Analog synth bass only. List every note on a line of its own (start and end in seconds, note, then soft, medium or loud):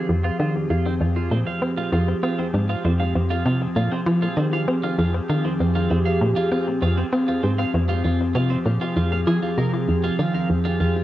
0.09 0.31 F2 medium
0.40 0.69 D#3 medium
0.70 0.99 F2 medium
1.01 1.30 F2 medium
1.31 1.44 A#2 medium
1.62 1.91 C4 medium
1.92 2.14 F2 loud
2.23 2.52 C4 medium
2.54 2.75 G#2 medium
2.85 3.14 F2 loud
3.15 3.44 F2 medium
3.46 3.67 C3 loud
3.76 3.89 A#2 medium
4.06 4.28 F3 medium
4.37 4.66 D#3 loud
4.68 4.97 C4 medium
4.98 5.20 F2 medium
5.29 5.58 D#3 medium
5.60 5.89 F2 medium
5.91 6.20 F2 medium
6.21 6.34 A#2 medium
6.51 6.81 C4 medium
6.82 7.04 F2 loud
7.13 7.42 C4 medium
7.44 7.65 G#2 medium
7.74 8.03 F2 loud
8.05 8.34 F2 medium
8.35 8.57 C3 loud
8.66 8.79 A#2 medium
8.96 9.26 F2 medium
9.27 9.40 F3 medium
9.58 9.87 C3 medium
9.88 10.10 F2 medium
10.19 10.48 D#3 medium
10.50 10.79 F2 medium
10.80 11.04 F2 medium